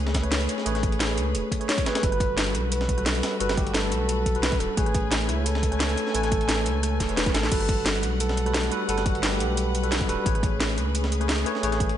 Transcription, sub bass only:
0.00 0.48 C#2 medium
0.66 1.19 A1 loud
1.18 1.36 C#2 medium
1.35 1.43 E1 medium
2.03 2.56 G1 loud
2.55 3.22 B1 medium
3.41 3.93 G1 loud
3.92 4.59 B1 medium
4.60 4.68 D1 medium
4.77 5.30 A1 loud
5.29 5.96 C#2 medium
6.15 6.67 A1 loud
6.66 7.00 C#2 medium
7.00 7.16 E1 loud
7.18 7.36 E1 medium
7.35 7.50 A1 loud
7.52 8.05 G1 loud
8.03 8.70 B1 medium
8.89 9.42 G1 loud
9.40 10.08 B1 medium
10.09 10.17 D1 medium
10.26 10.79 A1 loud
10.78 11.45 C#2 medium
11.63 11.97 A1 loud

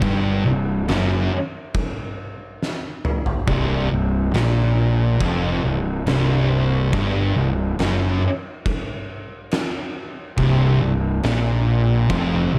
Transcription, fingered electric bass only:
0.02 0.43 G1 loud
0.46 0.86 C1 medium
0.89 1.29 F#1 loud
3.48 3.88 C1 loud
3.92 4.31 C1 medium
4.35 5.17 A#1 loud
5.21 5.61 F1 medium
5.64 6.04 C1 medium
6.07 6.89 C1 loud
6.93 7.33 G1 loud
7.36 7.76 C1 medium
7.79 8.19 F#1 loud
10.38 10.78 C1 loud
10.82 11.21 C1 medium
11.24 12.06 A#1 loud
12.10 12.50 F1 loud
12.54 12.59 C1 medium

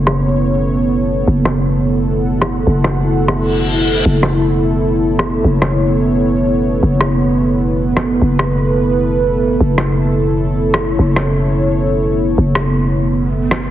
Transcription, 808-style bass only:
0.00 1.26 F#1 medium
1.28 2.65 F#1 medium
2.67 4.04 F#1 medium
4.06 5.43 F#1 medium
5.45 6.82 F#1 medium
6.83 8.20 F#1 medium
8.22 9.59 F#1 medium
9.61 10.98 F#1 medium
10.99 12.36 F#1 medium
12.38 13.71 F#1 medium

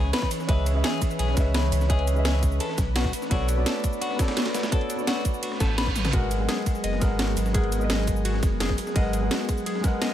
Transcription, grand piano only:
0.00 0.45 C#4 medium
0.00 0.46 G#4 medium
0.00 0.47 B4 medium
0.00 0.47 D#5 medium
0.00 0.48 E5 medium
0.47 0.72 C#4 medium
0.47 0.73 G#4 medium
0.47 0.73 B4 medium
0.47 0.73 D#5 medium
0.47 0.74 E5 loud
0.74 0.81 C#4 medium
0.74 0.81 G#4 medium
0.74 0.81 B4 medium
0.74 0.82 D#5 medium
0.74 0.82 E5 medium
1.34 1.86 C#4 medium
1.34 1.87 G#4 medium
1.34 1.88 B4 medium
1.38 1.88 D#5 medium
1.38 1.89 E5 loud
1.88 1.99 C#4 medium
1.88 2.00 G#4 medium
1.88 2.00 B4 medium
1.88 2.00 D#5 medium
1.88 2.01 E5 loud
2.13 2.58 C#4 medium
2.13 2.59 G#4 medium
2.13 2.59 B4 medium
2.18 2.60 D#5 medium
2.18 2.61 E5 medium
3.29 3.55 B3 medium
3.29 3.55 F#4 medium
3.29 3.55 A4 medium
3.29 3.56 C#5 medium
3.29 3.56 D5 loud
3.56 3.63 B3 medium
3.56 3.63 F#4 medium
3.56 3.64 A4 medium
3.56 3.64 C#5 medium
3.56 3.65 D5 medium
4.16 4.69 B3 medium
4.16 4.69 F#4 medium
4.16 4.70 A4 medium
4.21 4.71 C#5 medium
4.21 4.72 D5 loud
4.71 4.82 B3 medium
4.71 4.82 F#4 medium
4.71 4.82 A4 medium
4.71 4.83 C#5 medium
4.71 4.83 D5 loud
4.96 6.10 B3 medium
4.96 6.11 F#4 medium
4.96 6.11 A4 medium
5.00 6.12 C#5 medium
5.00 6.13 D5 medium
6.12 6.37 G#3 medium
6.12 6.37 G#4 medium
6.12 6.38 A#4 medium
6.12 6.38 B4 medium
6.12 6.39 F#5 loud
6.39 6.45 G#3 medium
6.39 6.46 G#4 medium
6.39 6.46 A#4 medium
6.39 6.47 B4 medium
6.39 6.47 F#5 medium
6.99 7.51 G#3 medium
6.99 7.52 G#4 medium
6.99 7.52 A#4 medium
7.03 7.53 B4 medium
7.03 7.54 F#5 loud
7.53 7.64 G#3 medium
7.53 7.64 G#4 medium
7.53 7.65 A#4 medium
7.53 7.65 B4 medium
7.53 7.65 F#5 medium
7.78 8.92 G#3 medium
7.78 8.93 G#4 medium
7.78 8.94 A#4 medium
7.83 8.94 B4 medium
7.83 8.95 D#5 medium
8.94 9.19 G#3 medium
8.94 9.20 G#4 medium
8.94 9.20 A#4 medium
8.94 9.20 B4 medium
8.94 9.21 F#5 loud
9.21 9.28 G#3 medium
9.21 9.28 G#4 medium
9.21 9.29 A#4 medium
9.21 9.29 B4 medium
9.21 9.29 F#5 medium
9.81 10.14 G#3 medium
9.81 10.14 G#4 medium
9.81 10.14 A#4 medium
9.85 10.14 B4 medium
9.85 10.14 F#5 loud

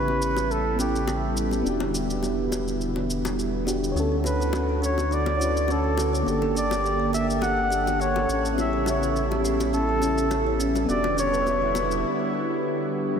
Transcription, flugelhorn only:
0.00 0.53 B4 loud
0.51 0.80 A4 medium
0.80 1.33 G4 medium
4.26 4.79 B4 medium
4.84 5.15 C#5 medium
5.13 5.73 D5 loud
5.71 6.15 A4 medium
6.58 7.11 D5 medium
7.14 7.27 E5 medium
7.43 8.02 F#5 loud
8.01 8.45 C#5 medium
8.60 8.86 E5 medium
8.90 9.42 C#5 medium
9.74 10.56 A4 loud
10.90 11.16 D5 loud
11.19 12.01 C#5 loud

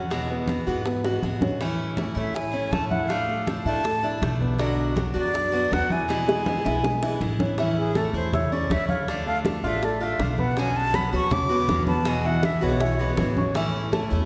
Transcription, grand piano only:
0.00 0.23 F#4 medium
0.00 0.24 F#5 medium
0.30 0.61 B3 medium
0.30 0.61 B4 medium
0.67 0.82 F#4 medium
0.67 0.82 F#5 medium
0.85 1.01 B3 medium
0.85 1.01 B4 medium
1.04 1.35 F#4 medium
1.04 1.35 F#5 medium
1.42 1.57 C#4 medium
1.42 1.57 C#5 medium
1.61 1.91 E3 medium
1.61 1.91 E4 medium
1.98 2.28 A3 medium
1.98 2.28 A4 medium
2.35 2.51 E4 medium
2.35 2.51 E5 medium
2.54 2.84 C#4 medium
2.54 2.84 C#5 medium
2.91 3.22 E4 medium
2.91 3.22 E5 medium
3.28 3.59 A3 medium
3.28 3.59 A4 medium
3.66 3.82 E4 medium
3.66 3.82 E5 medium
3.85 4.00 A3 medium
3.85 4.00 A4 medium
4.03 4.34 E4 medium
4.03 4.34 E5 medium
4.40 4.56 B3 medium
4.40 4.56 B4 medium
4.59 4.90 D3 medium
4.59 4.90 D4 medium
4.97 5.28 F#3 medium
4.97 5.28 F#4 medium
5.34 5.49 D4 medium
5.34 5.49 D5 medium
5.53 5.83 B3 medium
5.53 5.84 B4 medium
5.91 6.21 E4 medium
5.91 6.21 E5 medium
6.28 6.59 G#3 medium
6.28 6.59 G#4 medium
6.65 6.80 E4 medium
6.65 6.80 E5 medium
6.83 6.99 G#3 medium
6.83 6.99 G#4 medium
7.02 7.33 E4 medium
7.02 7.33 E5 medium
7.40 7.55 C#4 medium
7.40 7.55 C#5 medium
7.59 7.89 E3 medium
7.59 7.89 E4 medium
7.59 7.90 E5 medium
7.96 8.27 A3 medium
7.96 8.27 A4 medium
7.96 8.27 A5 medium
8.33 8.48 E4 medium
8.33 8.49 E5 medium
8.33 8.49 E6 medium
8.52 8.83 C#4 medium
8.52 8.83 C#5 medium
8.52 8.83 C#6 medium
8.89 9.20 F5 medium
8.89 9.20 F6 medium
9.26 9.57 A3 medium
9.26 9.57 A4 medium
9.26 9.57 A5 medium
9.64 9.79 F4 medium
9.64 9.79 F5 medium
9.64 9.79 F6 medium
9.82 9.98 A3 medium
9.82 9.98 A4 medium
9.82 9.98 A5 medium
10.01 10.31 F4 medium
10.01 10.32 F5 medium
10.01 10.32 F6 medium
10.39 10.54 B3 medium
10.39 10.54 B4 medium
10.39 10.54 B5 medium
10.57 10.88 C#4 medium
10.57 10.88 C#5 medium
10.94 11.25 F#3 medium
10.94 11.25 F#4 medium
10.94 11.25 F#5 medium
11.31 11.47 C#4 medium
11.31 11.47 C#5 medium
11.31 11.47 C#6 medium
11.50 11.81 B3 medium
11.50 11.81 B4 medium
11.50 11.81 B5 medium
11.87 12.18 B3 medium
11.87 12.18 B4 medium
11.87 12.18 B5 medium
12.25 12.55 E3 medium
12.25 12.56 E4 medium
12.25 12.56 E5 medium
12.62 12.78 B3 medium
12.62 12.78 B4 medium
12.62 12.78 B5 medium
12.81 12.96 E3 medium
12.81 12.96 E4 medium
12.81 12.96 E5 medium
12.99 13.30 B3 medium
12.99 13.30 B4 medium
12.99 13.31 B5 medium
13.37 13.52 C#4 medium
13.37 13.53 C#5 medium
13.37 13.53 C#6 medium
13.55 13.86 E3 medium
13.55 13.86 E4 medium
13.55 13.86 E5 medium
13.92 14.23 A3 medium
13.92 14.23 A4 medium
13.92 14.23 A5 medium

